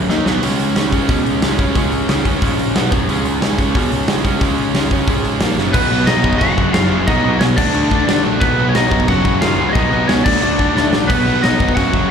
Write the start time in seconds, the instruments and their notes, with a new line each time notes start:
0.08 picked electric bass D#2, overdriven electric guitar D#3 A#3 D#4, snare
0.25 picked electric bass B1, overdriven electric guitar B2 F#3 B3, snare
0.42 picked electric bass C#2, overdriven electric guitar C#3 G#3 C#4, open hi-hat, splash
0.59 picked electric bass C#2, open hi-hat
0.76 picked electric bass C#2, overdriven electric guitar C#3 G#3 C#4, snare, open hi-hat
0.92 overdriven electric guitar C#3 G#3 C#4, kick, open hi-hat
1.09 picked electric bass B2, overdriven electric guitar C#3 G#3 C#4, kick, open hi-hat
1.26 picked electric bass C#2, open hi-hat
1.42 picked electric bass C#2, overdriven electric guitar C#3 G#3 C#4, snare, open hi-hat
1.59 overdriven electric guitar C#3 G#3 C#4, kick, open hi-hat
1.75 picked electric bass C#2, overdriven electric guitar C#3 G#3 C#4, kick, open hi-hat
1.92 picked electric bass C#2, open hi-hat
2.09 picked electric bass C#2, overdriven electric guitar C#3 G#3 C#4, snare, open hi-hat
2.25 overdriven electric guitar C#3 G#3 C#4, kick, open hi-hat
2.42 picked electric bass A#1, overdriven electric guitar C#3 G#3 C#4, kick, open hi-hat
2.59 open hi-hat
2.75 picked electric bass B1, overdriven electric guitar B2 F#3 B3, snare, open hi-hat
2.92 picked electric bass F#1, overdriven electric guitar F#2 C#3 F#3, kick, open hi-hat
3.08 picked electric bass C#2, overdriven electric guitar C#3 G#3 C#4, open hi-hat
3.25 picked electric bass C#2, open hi-hat
3.41 picked electric bass C#2, overdriven electric guitar C#3 G#3 C#4, snare, open hi-hat
3.58 overdriven electric guitar C#3 G#3 C#4, kick, open hi-hat
3.75 picked electric bass B2, overdriven electric guitar C#3 G#3 C#4, kick, open hi-hat
3.91 picked electric bass C#2, open hi-hat
4.08 picked electric bass C#2, overdriven electric guitar C#3 G#3 C#4, snare, open hi-hat
4.25 overdriven electric guitar C#3 G#3 C#4, kick, open hi-hat
4.41 picked electric bass C#2, overdriven electric guitar C#3 G#3 C#4, kick, open hi-hat
4.58 picked electric bass C#2, open hi-hat
4.74 picked electric bass C#2, overdriven electric guitar C#3 G#3 C#4, snare, open hi-hat
4.90 overdriven electric guitar C#3 G#3 C#4, kick, open hi-hat
5.07 picked electric bass G#1, overdriven electric guitar C#3 G#3 C#4, kick, open hi-hat
5.25 open hi-hat
5.40 picked electric bass A#1, overdriven electric guitar A#2 F3 A#3, snare, open hi-hat
5.57 picked electric bass F#1, overdriven electric guitar F#2 C#3 F#3, snare
5.73 picked electric bass B1, overdriven electric guitar B2 F#3 B3, lead electric guitar B3 B4, kick, crash
5.91 overdriven electric guitar B2 F#3 B3
6.07 picked electric bass B1, overdriven electric guitar B2 F#3 B3, lead electric guitar D#4 D#5, snare, crash
6.24 picked electric bass B1, overdriven electric guitar B2 F#3 B3, kick
6.33 kick
6.38 picked electric bass F#1, overdriven electric guitar F#2 C#3, lead electric guitar F#4 F#5, kick, crash
6.42 overdriven electric guitar F#3
6.58 overdriven electric guitar F#2 C#3 F#3, kick
6.73 overdriven electric guitar F#2 C#3 F#3, picked electric bass F#2, lead electric guitar F4 F5, snare, crash
6.90 picked electric bass F#1, overdriven electric guitar F#2 C#3 F#3
7.07 picked electric bass B1, overdriven electric guitar B2 F#3 B3, lead electric guitar D#4 D#5, kick, crash
7.24 picked electric bass B1, overdriven electric guitar B2 F#3 B3
7.39 picked electric bass B1, overdriven electric guitar B2 F#3 B3, lead electric guitar C#4 C#5, snare, crash
7.57 picked electric bass D2, overdriven electric guitar D3 A3 D4, lead electric guitar D4 D5, kick, crash
7.74 picked electric bass D2, overdriven electric guitar D3 A3 D4, crash
7.91 overdriven electric guitar D3 A3 D4, kick
8.07 picked electric bass D2, overdriven electric guitar D3 A3 D4, snare, crash
8.24 picked electric bass A#1, overdriven electric guitar D3 A3 D4
8.40 picked electric bass B1, overdriven electric guitar B2 F#3 B3, lead electric guitar B3 B4, kick, crash
8.57 overdriven electric guitar B2 F#3 B3
8.69 overdriven electric guitar B2, lead electric guitar C#5
8.74 picked electric bass B1, overdriven electric guitar F#3 B3, lead electric guitar D#4 D#5, snare, crash
8.90 picked electric bass B1, overdriven electric guitar B2 F#3 B3, kick
9.00 kick
9.07 picked electric bass F#1, overdriven electric guitar F#2 C#3 F#3, lead electric guitar F#4 F#5, kick, crash
9.24 overdriven electric guitar F#2 C#3 F#3, kick
9.40 overdriven electric guitar F#2 C#3 F#3, picked electric bass F#2, lead electric guitar F4 F5, snare, crash
9.58 picked electric bass C#2, overdriven electric guitar F#2 C#3 F#3
9.69 lead electric guitar C#5 D#5
9.74 picked electric bass B1, overdriven electric guitar B2 F#3 B3, lead electric guitar D#4, kick, crash
9.91 picked electric bass B1, overdriven electric guitar B2 F#3 B3
10.07 picked electric bass C#2, overdriven electric guitar B2 F#3 B3, lead electric guitar C#4 C#5, snare, crash
10.24 picked electric bass D2, overdriven electric guitar D3 A3 D4, lead electric guitar D4 D5, kick, crash
10.42 picked electric bass D2, overdriven electric guitar D3 A3 D4, crash
10.59 overdriven electric guitar D3 A3 D4, kick
10.76 picked electric bass D2, overdriven electric guitar D3 A3 D4, snare
10.92 picked electric bass A#1, overdriven electric guitar D3 A3 D4, snare
11.08 picked electric bass B1, overdriven electric guitar B2 F#3 B3, lead electric guitar B3 B4, kick, crash
11.26 overdriven electric guitar B2 F#3 B3
11.43 picked electric bass B1, overdriven electric guitar B2 F#3 B3, lead electric guitar D#4 D#5, snare, crash
11.60 picked electric bass G#1, overdriven electric guitar B2 F#3 B3, kick
11.69 kick
11.75 picked electric bass F#1, overdriven electric guitar F#2 C#3 F#3, lead electric guitar F#4 F#5, kick, crash
11.94 overdriven electric guitar F#2 C#3 F#3, kick